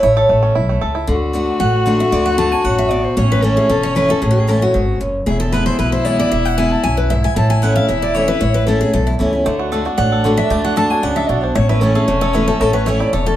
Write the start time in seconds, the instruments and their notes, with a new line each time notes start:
Already playing: five-string banjo A3 A4
0.03 upright bass A1, five-string banjo E4, steel-string acoustic guitar C#5
0.17 five-string banjo A4
0.29 upright bass A1, five-string banjo A3
0.43 five-string banjo C#4
0.55 upright bass B1, five-string banjo E4
0.69 five-string banjo A3
0.81 upright bass C#2, five-string banjo A4
0.95 five-string banjo E4
1.07 upright bass D2, steel-string acoustic guitar D3, fiddle F#4
1.33 steel-string acoustic guitar D3 A3 D4 F#4
1.59 upright bass A1, steel-string acoustic guitar A2 F#5
1.86 steel-string acoustic guitar D3 A3 D4 F#4
1.99 steel-string acoustic guitar D4 F#4 E5
2.12 upright bass D2, steel-string acoustic guitar D3 D5
2.26 steel-string acoustic guitar F#5
2.38 steel-string acoustic guitar D3 A3 D4 F#4 A5
2.51 steel-string acoustic guitar D4 F#4 G#5
2.64 upright bass A1, steel-string acoustic guitar F#2 F#5
2.78 steel-string acoustic guitar E5
2.91 steel-string acoustic guitar B2 D5
3.04 steel-string acoustic guitar C5
3.16 upright bass A1, steel-string acoustic guitar A2 C#5, fiddle C#4
3.32 steel-string acoustic guitar B4
3.43 steel-string acoustic guitar E3 A3 C#4 E4 A4
3.56 steel-string acoustic guitar C#4 E4 G#4
3.69 upright bass E1, steel-string acoustic guitar E2 A4
3.83 steel-string acoustic guitar C#5
3.95 steel-string acoustic guitar E3 A3 C#4 E4 B4
4.09 steel-string acoustic guitar C#4 E4 A4
4.22 upright bass A1, steel-string acoustic guitar A2 G#4
4.31 steel-string acoustic guitar F#4
4.40 steel-string acoustic guitar G#4
4.47 steel-string acoustic guitar E3 A3 C#4 E4 A4
4.61 steel-string acoustic guitar C#4 E4 F#4
4.74 upright bass G#1, steel-string acoustic guitar G#2
5.00 upright bass F#1, steel-string acoustic guitar F#2
5.26 upright bass E1, steel-string acoustic guitar E2 G#4, fiddle E4
5.40 steel-string acoustic guitar A4
5.52 steel-string acoustic guitar E3 G#3 B3 E4 B4
5.66 steel-string acoustic guitar C5
5.79 upright bass B1, steel-string acoustic guitar B2 B4
5.92 steel-string acoustic guitar C5
6.05 steel-string acoustic guitar E3 G#3 B3 E4 C#5
6.19 steel-string acoustic guitar D5
6.31 upright bass E1, steel-string acoustic guitar E2 E5
6.45 steel-string acoustic guitar F#5
6.58 steel-string acoustic guitar E3 G#3 B3 E4 G#5
6.71 steel-string acoustic guitar B3 E4 A5
6.83 upright bass B1, steel-string acoustic guitar F#2 G#5
6.97 steel-string acoustic guitar B4
7.10 steel-string acoustic guitar G#2 E5
7.24 steel-string acoustic guitar G#5
7.36 upright bass A1, steel-string acoustic guitar A2 A5, fiddle E4
7.50 steel-string acoustic guitar G#5
7.62 steel-string acoustic guitar E3 A3 C#4 E4 F#5
7.75 steel-string acoustic guitar C#4 E4 F5
7.88 upright bass E1, steel-string acoustic guitar E2 E5
8.02 steel-string acoustic guitar D5
8.14 steel-string acoustic guitar E3 A3 C#4 E4 C#5
8.28 steel-string acoustic guitar C#4 E4 B4
8.41 upright bass A1, steel-string acoustic guitar A2 C#5
8.54 steel-string acoustic guitar B4
8.67 steel-string acoustic guitar E3 A3 C#4 E4 A4
8.81 steel-string acoustic guitar C#4 E4 G#4
8.93 upright bass B1, steel-string acoustic guitar E2 A4
9.07 steel-string acoustic guitar E4
9.19 upright bass C#2, steel-string acoustic guitar E3 A3 C#4 E4
9.33 steel-string acoustic guitar C#4 E4
9.45 upright bass D2, steel-string acoustic guitar D3, five-string banjo A3, fiddle D4
9.59 five-string banjo F#4
9.72 steel-string acoustic guitar D3 A3 D4 F#4, five-string banjo A4
9.85 steel-string acoustic guitar D4 F#4, five-string banjo F#4
9.98 upright bass A1, steel-string acoustic guitar A2 F#5, five-string banjo D4
10.12 five-string banjo A4
10.24 steel-string acoustic guitar D3 A3 D4 F#4, five-string banjo F#4
10.37 five-string banjo D4, steel-string acoustic guitar D4 F#4 E5
10.50 upright bass D2, steel-string acoustic guitar D3 D5, five-string banjo A3
10.65 five-string banjo F#4, steel-string acoustic guitar F#5
10.76 steel-string acoustic guitar D3 A3 D4 F#4 A5, five-string banjo A4
10.90 steel-string acoustic guitar D4 F#4 G#5, five-string banjo F#4
11.03 upright bass C#2, steel-string acoustic guitar C#3 F#5, five-string banjo D4
11.16 five-string banjo A4, steel-string acoustic guitar E5
11.28 upright bass B1, steel-string acoustic guitar B2 D5, five-string banjo F#4
11.43 five-string banjo D4, steel-string acoustic guitar C5
11.55 upright bass A1, steel-string acoustic guitar A2 C#5, five-string banjo A3, fiddle C#4
11.69 five-string banjo E4, steel-string acoustic guitar B4
11.81 steel-string acoustic guitar E3 A3 C#4 E4 A4, five-string banjo C#4
11.95 steel-string acoustic guitar C#4 E4 G#4, five-string banjo A4
12.07 upright bass E1, steel-string acoustic guitar E2 A4, five-string banjo A3
12.21 five-string banjo A4, steel-string acoustic guitar C#5
12.33 steel-string acoustic guitar E3 A3 C#4 E4 B4, five-string banjo E4
12.47 five-string banjo A3, steel-string acoustic guitar C#4 E4 A4
12.60 upright bass A1, steel-string acoustic guitar A2 A4, five-string banjo A3
12.73 five-string banjo C#4, steel-string acoustic guitar B4
12.86 steel-string acoustic guitar E3 A3 C#4 E4 C#5, five-string banjo A3
13.00 steel-string acoustic guitar C#4 E4 D5, five-string banjo E4
13.12 upright bass E1, steel-string acoustic guitar E2 C#5, five-string banjo A4
13.26 five-string banjo C#4, steel-string acoustic guitar A4